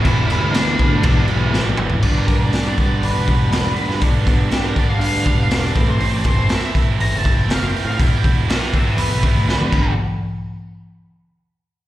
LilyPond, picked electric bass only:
\new Staff \with { instrumentName = "Picked electric bass" } { \clef bass \time 4/4 \key g \major \tempo 4 = 121 e,,8. d,8. d,8 e,,8 b,,8 a,,8 g,,8 | g,,8 e,,8 r4 g,,16 e,,8. e,,8 r16 g,16 | b,,16 r16 g,,8 r4 g,16 d,16 r16 e,,8. a,,8 | a,,8 fis,,8 r4 a,,16 fis,,8. fis,,8 r16 a,16 |
e,,16 r16 e,,8 r4 e,16 b,,16 r16 d,8. g,,8 | r1 | }